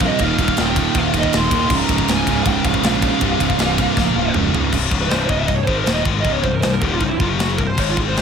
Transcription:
0.01 C2 G2 C3, kick
0.07 D#5
0.19 D#1 D#2 A#2 D#3 F5, kick, ride
0.38 D#1 D#2 A#2 D#3, kick, ride
0.48 kick
0.57 D#1 D#2 A#2 D#3 G5, snare, ride
0.76 D#2 A#2 D#3, kick, ride
0.94 D#1 D#2 A#2 D#3, kick, ride
0.99 F5
1.14 D#1 D#2 A#2 D#3, kick, ride
1.19 D#5, kick
1.33 D#1 D#2 A#2 D#3 C6, snare, ride
1.51 D#2 A#2 D#3, kick, ride
1.70 C#1 C#2 G#2 C#3, kick, crash
1.76 A#5
1.88 C#1 C#2 G#2 C#3, kick, ride
1.98 kick
2.08 C#1 C#2 G#2 C#3, snare, ride
2.13 G#5
2.27 C#1 C#2 G#2 C#3, kick, ride
2.43 C#1 F5, kick, ride
2.47 C#2 G#2 C#3 G5
2.64 C#1 C#2 G#2 C#3 F5, kick, ride
2.74 kick
2.82 A#1 C#2 G#2 C#3, snare, ride
2.87 F5
3.02 C#2 G#2 C#3, kick, ride
3.21 C1 C2 G2 C3, kick, ride
3.40 C1 C2 G2 C3, kick, ride
3.50 kick
3.58 C1 C2 G2 C3, snare, ride
3.78 C2 G2 C3, kick, ride
3.95 C#1 A#2 F3 A#3, kick, snare
4.15 C#1 A#2 F3 A#3
4.34 C#1 C#2 G#2 C#3, mid tom
4.53 C#2 G#2 C#3, floor tom
4.73 C1 C2 G2 C3, kick, crash, china
4.91 C#1 C#2 G#2 C#3, kick
5.01 B4
5.10 C1 C2 G2 C3 C5, snare, china
5.19 C#5
5.29 C#1 C#2 G#2 C#3 D#5, kick
5.39 E5
5.47 C1 C2 G2 D#5, kick, china
5.55 C#5
5.64 G#1 G#2 C5, kick
5.68 D#3 G#3
5.75 A#4
5.84 D#1 C5, snare, china
5.88 D#2 A#2 D#3
5.93 D#5
6.05 G#1 G#2 D#3 G#3, kick
6.21 D#5
6.25 C#1 C#2 G#2 C#3, kick, china
6.32 C#5
6.43 C1 C2 G2 C5, kick
6.52 A#4
6.61 C1 C2 G2 C5, snare, china
6.72 A#4
6.81 D#1 D#2 A#2 D#3 G4, kick
6.92 F4
6.99 C1 C2 D#4, kick, china
7.03 G2
7.09 E4
7.18 F#1 F#2 C#3 F4, kick
7.23 F#3
7.28 G4
7.39 F#4, snare, china
7.48 G#4
7.58 C1 C2 G2 A#4, kick
7.67 C5
7.77 G#1 G#2 D#3 G#3 C#5, kick, crash, china
7.90 F4
7.97 G#1 G#2 D#3 G#3 G#4, kick
8.09 C5
8.16 G#1 G#2 D#3 G#3, snare, china

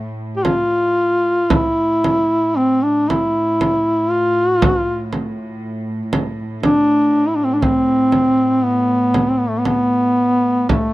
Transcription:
Already playing: A2 A3
0.36 G4
0.44 F4, frame drum
1.50 A2 E4, frame drum
2.04 frame drum
2.57 C4
2.83 D4
3.09 E4, frame drum
3.61 frame drum
4.11 F4
4.62 frame drum
5.13 frame drum
6.13 frame drum
6.63 D4, frame drum
7.28 E4
7.36 D4
7.44 C4
7.53 D4
7.62 C4, frame drum
8.12 frame drum
8.64 B3
9.14 frame drum
9.31 C4
9.38 B3
9.49 A3
9.58 B3
9.65 B3, frame drum
10.69 A3, frame drum

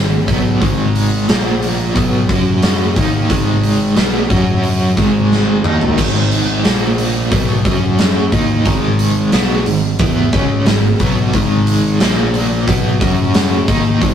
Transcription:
Already playing: G#1 G#2 D#3
0.27 B1 B2 F#3 B3, kick, open hi-hat
0.60 G#1 G#2 D#3 G#3, kick, open hi-hat
0.95 open hi-hat
1.28 A#1 A#2 F3 A#3, snare, open hi-hat
1.63 open hi-hat
1.95 B1 B2 F#3 B3, kick, open hi-hat
2.29 F#2 F#3 C#4 F#4, kick, open hi-hat
2.63 snare, open hi-hat
2.96 D#2 D#3 A#3 D#4, kick, open hi-hat
3.30 G#1 G#2 D#3 G#3, kick, open hi-hat
3.63 open hi-hat
3.96 B1 B2 F#3 B3, snare, open hi-hat
4.29 F#2 F#3 C#4 F#4, kick, open hi-hat
4.64 open hi-hat
4.96 G#1 G#2 D#3 G#3, kick, snare, open hi-hat
5.32 snare
5.64 D#2 D#3 A#3 D#4, mid tom
5.81 floor tom
5.98 G#1 G#2 D#3 G#3, kick, crash
6.32 open hi-hat
6.64 A#1 A#2 F3 A#3, snare, open hi-hat
6.98 open hi-hat
7.32 B1 B2 F#3 B3, kick, open hi-hat
7.65 F#2 F#3 C#4 F#4, kick, open hi-hat
7.99 snare, open hi-hat
8.32 D#2 D#3 A#3 D#4, kick, open hi-hat
8.65 G#1 G#2 D#3 G#3, kick, open hi-hat
8.99 open hi-hat
9.32 B1 B2 F#3 B3, snare, open hi-hat
9.66 G#1 G#2 D#3, open hi-hat
9.99 E2 E3 B3 E4, kick, open hi-hat
10.33 C#2 C#3 G#3 C#4, kick, open hi-hat
10.66 G#1 G#2 D#3, snare, open hi-hat
11.00 B1 B2 F#3 B3, kick, open hi-hat
11.33 G#1 G#2 D#3 G#3, kick, open hi-hat
11.67 open hi-hat
12.00 A#1 A#2 F3 A#3, snare, open hi-hat
12.34 open hi-hat
12.68 B1 B2 F#3 B3, kick, open hi-hat
13.01 F#2 F#3 C#4 F#4, kick, open hi-hat
13.34 snare, open hi-hat
13.68 D#2 D#3 A#3 D#4, kick, open hi-hat
14.01 G#1 G#2 D#3 G#3, kick, open hi-hat

